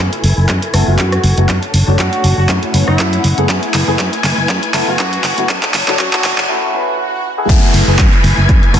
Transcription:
Already playing: E4 A4 B4 G#5
0.13 closed hi-hat
0.24 F#1, open hi-hat
0.37 F#1
0.49 F#2, kick, clap, closed hi-hat
0.62 closed hi-hat
0.74 F#1 A3 B3 E4 A4, cross-stick, open hi-hat
0.88 F#1 A3 B3 E4 F#4
0.98 F#2, kick, clap, closed hi-hat
1.12 cross-stick, closed hi-hat
1.24 F#1, open hi-hat
1.37 F#1 A3 B3 E4 F#4, closed hi-hat
1.49 F#2 D3 C#5 A5, kick, clap, closed hi-hat
1.63 closed hi-hat
1.74 F#1, open hi-hat
1.87 F#1 A3 C#4 D4 F#4
1.99 F#2 F#4, kick, clap, closed hi-hat
2.13 closed hi-hat
2.24 F#1, open hi-hat
2.37 F#1 F#4
2.48 F#2 A3 C#4 E4 F#4 F#5, kick, clap, closed hi-hat
2.63 muted fingered electric bass stroke, closed hi-hat
2.73 F#1 A3 C#4 E4 B4, open hi-hat
2.87 F#1 E4, cross-stick
2.99 F#2, kick, clap, closed hi-hat
3.13 closed hi-hat
3.24 F#1, open hi-hat
3.38 F#1 A3 B3 E4 G#4, closed hi-hat
3.49 F#2 A3 B4 G#5, kick, clap, closed hi-hat
3.63 closed hi-hat
3.74 F#1, clap, open hi-hat
3.88 F#1 A3 B3 E4 G#4
3.99 F#2, kick, clap, closed hi-hat
4.13 closed hi-hat
4.24 F#1, clap, open hi-hat
4.38 F#1
4.49 F#2, kick, clap, closed hi-hat
4.63 closed hi-hat
4.74 F#1 A3 B3 E4 A4, clap, open hi-hat
4.87 F#1 A3 B3 E4 F#4
4.99 F#2, kick, clap, closed hi-hat
5.13 closed hi-hat
5.24 F#1, clap, open hi-hat
5.37 F#1 A3 B3 E4 F#4, closed hi-hat
5.49 F#2 D3 C#5 A5, kick, clap, closed hi-hat
5.63 clap, closed hi-hat
5.74 F#1, clap, open hi-hat
5.87 F#1 A3 C#4 D4 F#4, clap
5.99 F#2 F#4, kick, clap, closed hi-hat
6.13 clap, closed hi-hat
6.24 F#1, clap, open hi-hat
6.38 F#1, clap
6.48 A3 C#4 E4 F#4, swell
6.73 A3 C#4 E4 B4
7.37 A3 B3 E4 G#4
7.48 F#2 A3 B3 E4 G#4 B4 G#5, kick, closed hi-hat, crash, downlifter
7.63 closed hi-hat
7.74 F#1, open hi-hat
7.87 F#1 A3 B3 E4 G#4
7.99 F#2, kick, clap, closed hi-hat
8.13 closed hi-hat
8.24 F#1, open hi-hat
8.38 F#1
8.49 F#2, kick, closed hi-hat
8.63 closed hi-hat
8.73 F#1 A3 B3 E4 A4, cross-stick, open hi-hat

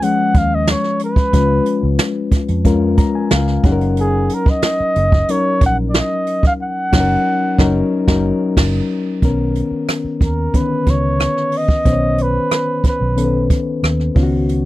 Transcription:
Already playing: G#3 C#4 F4 B4
0.02 F3 G#3 C#4 G#4 F#5, closed hi-hat
0.34 D#2 F5, kick, closed hi-hat
0.55 D#5
0.67 C#5, snare, closed hi-hat
0.84 snare
0.99 closed hi-hat
1.04 B4
1.16 kick, closed hi-hat
1.33 C#2 G#3 C#4 F4 B4, kick, closed hi-hat
1.66 closed hi-hat
1.83 C#2
1.98 snare, closed hi-hat
2.32 muted fingered electric bass stroke, kick, closed hi-hat
2.48 F2, closed hi-hat
2.65 G#3 C#4 F4 A#4, kick, closed hi-hat
2.97 A#5, kick, closed hi-hat
3.15 G#5
3.30 C#2 F5, snare, closed hi-hat
3.47 snare
3.63 F#1 F#3 C#4 D#4 G#4 F#5, kick, closed hi-hat
3.72 A#4
3.81 closed hi-hat
3.97 G#4, closed hi-hat
4.29 closed hi-hat
4.34 A#4
4.46 D#5, muted fingered electric bass stroke, kick
4.62 snare, closed hi-hat
4.80 muted fingered electric bass stroke
4.96 F#1, closed hi-hat
5.12 kick
5.28 F#3 C#4 D#4 A#4 C#5, closed hi-hat
5.61 A#1, kick, closed hi-hat
5.66 F#5
5.90 D5
5.94 snare, closed hi-hat
5.99 D#5
6.27 closed hi-hat
6.43 F5, kick, closed hi-hat
6.63 F#5
6.92 F#1 F#3 C#4 D#4, kick, snare, crash
7.00 A#4
7.58 F#1 F#3 C#4 D#4 A#4, kick, snare
8.08 F#1 F#3 C#4 D#4 A#4, kick, snare
8.57 F#1, kick, snare, crash
9.22 B1 D#3 B3 C#4 A#4, kick, closed hi-hat
9.55 closed hi-hat
9.71 muted fingered electric bass stroke
9.88 cross-stick, closed hi-hat
10.05 muted fingered electric bass stroke
10.21 D#2 A#4, kick, closed hi-hat
10.53 D3 B3 C#4 B4, kick, closed hi-hat
10.60 D#3
10.86 C#2 C#5, kick, closed hi-hat
11.20 cross-stick, closed hi-hat
11.37 cross-stick
11.52 open hi-hat
11.57 D#5
11.68 kick
11.85 B1 D#3 B3 C#4 C5, kick, closed hi-hat
11.93 C#5
12.18 closed hi-hat
12.22 B4
12.51 cross-stick, closed hi-hat
12.84 muted fingered electric bass stroke, kick, closed hi-hat
12.88 B4
13.01 B1
13.16 D#3 B3 C#4 A4, closed hi-hat
13.24 B4
13.50 kick, closed hi-hat
13.83 D#2, cross-stick, closed hi-hat
14.00 cross-stick
14.15 C#2 D#3 B3 C#4 F4, kick, open hi-hat
14.23 F#4
14.49 closed hi-hat

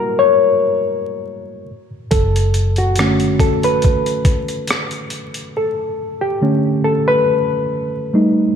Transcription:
Already playing: G3 A#3 E4 F#4 G4 A#4
0.19 C#5
2.11 F#1 A4, kick, closed hi-hat
2.36 closed hi-hat
2.54 closed hi-hat
2.76 F#4, closed hi-hat
2.96 D3 A3, cross-stick, closed hi-hat
3.00 C#4
3.20 closed hi-hat
3.40 A4, kick, closed hi-hat
3.63 B4, closed hi-hat
3.82 kick, closed hi-hat
4.06 closed hi-hat
4.25 kick, closed hi-hat
4.48 closed hi-hat
4.67 cross-stick, closed hi-hat
4.91 closed hi-hat
5.10 closed hi-hat
5.34 closed hi-hat
5.57 A4
6.21 G4
6.41 D3 A3 C#4
6.84 A4
7.08 B4
8.13 G3 A3 D#4

